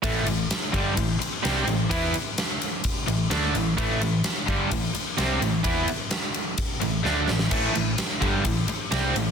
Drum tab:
CC |----------------|----------------|----------------|----------------|
RD |x-x-x-x-x-x-x-x-|x-x-x-x-x-x-x-x-|x-x-x-x-x-x-x-x-|x-x-x-x-x-x-----|
SD |----o-------o---|----o-------o---|----o-------o---|----o-------o-oo|
BD |o-----o-o-------|o-------o-------|o-----o-o-------|o-------o-------|

CC |x---------------|
RD |x-x-x-x-x-x-x-x-|
SD |----o-------o---|
BD |o-----o-o-------|